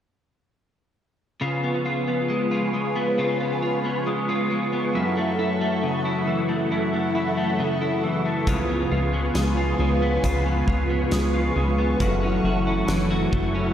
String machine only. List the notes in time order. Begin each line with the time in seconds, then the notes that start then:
1.41 F4 B4 G#5 C#6
4.95 E4 A4 F#5
8.47 F4 B4 G#5 C#6
12.00 E4 A4 F#5